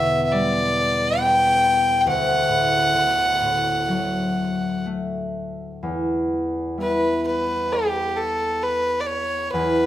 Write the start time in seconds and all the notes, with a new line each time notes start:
Already playing: E2 B2 E5
0.25 E5
0.31 G3 D5
1.18 B3 G5
2.01 G5
2.06 D2 F#5
2.49 A2
2.95 D3
3.41 A2
3.88 F#3
4.86 A3
5.83 E2
6.77 G3 B3 E4 B4
7.26 B4
7.72 G4
8.17 A4
8.63 B4
9.00 D5
9.06 C#5
9.51 E2 B4